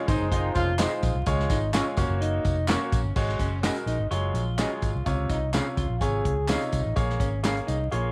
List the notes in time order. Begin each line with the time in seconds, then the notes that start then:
0.08 G#1 D#3 G#3 C4 D#4 C5, kick, closed hi-hat, tambourine
0.20 F#1
0.31 D#3 G#3 C4 D#4 F4, kick, closed hi-hat, tambourine
0.55 F1 F3 A#3 C#4 F4, kick, closed hi-hat, tambourine
0.78 G#3 C4 D#4 F4 G#4 C5, snare, clap, closed hi-hat, tambourine
1.03 A#1, kick, closed hi-hat, tambourine
1.15 C2
1.26 C#2 G#3 F4 C#5, kick, closed hi-hat, tambourine
1.39 snare
1.49 G#1 D#4, kick, snare, closed hi-hat, tambourine
1.73 G#3 C#4 F4 G#4 C#5, snare, clap, closed hi-hat, tambourine
1.97 F#1 A#3 C#4 F#4 C#5, kick, closed hi-hat, tambourine
2.09 F#1
2.21 D#4, closed hi-hat
2.45 F1, kick, closed hi-hat, tambourine
2.68 A#3 C#4 F#4 A#4 C#5, snare, clap, closed hi-hat, tambourine
2.92 A#1, kick, closed hi-hat, tambourine
3.04 G1
3.16 G#1 G#3 F#4 C#5, kick, crash, tambourine
3.29 snare
3.39 F#1 C#4, kick, closed hi-hat, tambourine
3.63 G#3 C#4 F#4 G#4 A#4 D#5, snare, clap, closed hi-hat, tambourine
3.76 closed hi-hat
3.86 A#1 D#4, closed hi-hat, tambourine
3.99 G#1
4.11 F#1 F#3 G#3 F4 C#5, closed hi-hat, tambourine
4.34 A#1, closed hi-hat, tambourine
4.58 F#3 G#3 C#4 F4 F#4 G#4 C#5 D#5, snare, clap, closed hi-hat, tambourine
4.82 G#1, kick, closed hi-hat, tambourine
4.95 C2
5.06 C#2 C3 F4 C#5, kick, closed hi-hat, tambourine
5.29 C2 D#4, kick, snare, closed hi-hat, tambourine
5.53 C3 C#4 F4 G#4 C5 C#5 F5, snare, clap, closed hi-hat, tambourine
5.77 C#2 F4, kick, closed hi-hat, tambourine
5.90 A#1
6.01 G#1 C3 F4 G#4 C#5, kick, closed hi-hat, tambourine
6.25 C#2, kick, closed hi-hat
6.48 C3 C#4 D#4 F4 G#4 C5 C#5 F5, snare, clap, closed hi-hat, tambourine
6.61 closed hi-hat
6.72 C2, kick, closed hi-hat, tambourine
6.86 A1
6.96 A#1 A#3 G#4 C#5, kick, closed hi-hat, tambourine
7.10 snare
7.20 G#1 C#4, kick, closed hi-hat, tambourine
7.43 A#3 C#4 G#4 A#4 C#5 F5, snare, clap, closed hi-hat, tambourine
7.57 closed hi-hat
7.67 C2 D#4, closed hi-hat, tambourine
7.91 A#1 A#3 F4 G#4 C#5, closed hi-hat